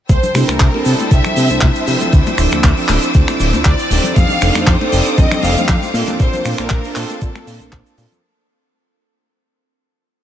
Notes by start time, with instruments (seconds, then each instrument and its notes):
0.09 analog synth bass C2, string section C5 G5 A5 E6, violin section C5, kick, closed hi-hat, muted conga, shaker
0.23 closed hi-hat, low conga, shaker
0.34 analog synth bass C3, analog polysynth G3 C4 D4 E4 A4, finger snap, open hi-hat, muted conga, shaker
0.48 analog synth bass C2, violin section A#4, finger snap, closed hi-hat, high conga, shaker
0.60 analog synth bass C2, kick, clap, closed hi-hat, shaker
0.73 analog polysynth G3 C4 D4 E4 A4, muted conga
0.84 analog synth bass C3, violin section A4, open hi-hat, shaker
0.99 closed hi-hat, muted conga, shaker
1.10 analog synth bass C2, analog polysynth G3 C4 D4 E4 A4, violin section E5, kick, closed hi-hat, shaker
1.25 finger snap, low conga, shaker
1.36 analog synth bass C3, open hi-hat, muted conga, shaker
1.49 analog synth bass C2, analog polysynth G3 C4 D4 E4 C5, closed hi-hat, high conga, shaker
1.61 analog synth bass C2, kick, clap, closed hi-hat, muted conga, shaker
1.75 closed hi-hat, shaker
1.87 analog synth bass C3, analog polysynth F3 C4 D4 E4 A4, open hi-hat, shaker
2.01 closed hi-hat, muted conga, low conga, shaker
2.13 analog synth bass D2, string section D6, kick, closed hi-hat, shaker
2.26 closed hi-hat, muted conga, low conga, shaker
2.37 analog synth bass D1, analog polysynth F3 C4 D4 E4 A4, finger snap, open hi-hat, shaker
2.51 analog synth bass D2, finger snap, closed hi-hat, high conga, shaker
2.64 analog synth bass D2, kick, clap, closed hi-hat, muted conga, shaker
2.76 analog polysynth F3 C4 D4 E4 A4, open hi-hat
2.88 analog synth bass D1, clap, open hi-hat, muted conga, shaker
3.02 closed hi-hat, shaker
3.14 analog synth bass D2, analog polysynth F3 C4 D4 E4 A4, kick, closed hi-hat, shaker
3.28 finger snap, muted conga, shaker
3.40 analog synth bass D1, open hi-hat, shaker
3.53 analog synth bass D2, analog polysynth F3 C4 D4 E4 C5, closed hi-hat, muted conga, high conga, shaker
3.65 analog synth bass D2, violin section D5, kick, clap, closed hi-hat, shaker
3.79 closed hi-hat, shaker
3.90 analog synth bass D1, analog polysynth G3 C4 D4 D#4 A4, open hi-hat, muted conga, shaker
4.04 closed hi-hat, low conga, shaker
4.15 analog synth bass F2, string section A4 G5 D6 D#6, violin section F5, kick, closed hi-hat, muted conga, shaker
4.29 closed hi-hat, low conga, shaker
4.41 analog synth bass F1, analog polysynth G3 C4 D4 D#4 A4, finger snap, open hi-hat, shaker
4.55 analog synth bass F2, finger snap, closed hi-hat, muted conga, high conga, shaker
4.66 analog synth bass F2, violin section C5, kick, clap, closed hi-hat, shaker
4.80 analog polysynth G3 C4 D4 D#4 A4, muted conga
4.92 analog synth bass F1, open hi-hat, shaker
5.06 closed hi-hat, shaker
5.17 analog synth bass F2, analog polysynth G3 C4 D4 D#4 A4, violin section D#5, kick, closed hi-hat, muted conga, shaker
5.31 finger snap, low conga, shaker
5.43 analog synth bass F1, violin section F5, open hi-hat, muted conga, shaker
5.57 analog synth bass F2, analog polysynth G3 C4 D4 D#4 C5, closed hi-hat, high conga, shaker
5.68 analog synth bass F2, kick, clap, closed hi-hat, shaker
5.83 closed hi-hat, muted conga, shaker
5.94 analog synth bass A#2, analog polysynth A#3 C4 D4 F4 A4, string section A#3 A5 C6, open hi-hat, shaker
6.08 closed hi-hat, muted conga, low conga, shaker
6.20 analog synth bass A#1, violin section C5, kick, closed hi-hat, shaker
6.33 closed hi-hat, low conga, shaker
6.45 analog synth bass A#2, analog polysynth A#3 C4 D4 F4 A4, finger snap, open hi-hat, muted conga, shaker
6.58 analog synth bass A#1, violin section A#4, finger snap, closed hi-hat, high conga, shaker
6.69 analog synth bass A#1, kick, clap, closed hi-hat, muted conga, shaker
6.84 analog polysynth A#3 C4 D4 F4 A4, open hi-hat, shaker
6.95 analog synth bass A#2, violin section A4, clap, open hi-hat, shaker
7.09 closed hi-hat, muted conga, shaker
7.21 analog synth bass A#1, analog polysynth A#3 C4 D4 F4 A4, kick, closed hi-hat, shaker
7.36 finger snap, muted conga, shaker
7.47 analog synth bass A#2, open hi-hat, shaker
7.60 analog synth bass A#1, analog polysynth A#3 C4 D4 F4 A4, closed hi-hat, high conga, shaker
7.72 analog synth bass A#1, kick, clap, closed hi-hat, muted conga, shaker
7.86 closed hi-hat, shaker
7.97 analog synth bass A#2, analog polysynth A#3 C4 D4 F4 A4, open hi-hat, muted conga, shaker
8.12 closed hi-hat, low conga, shaker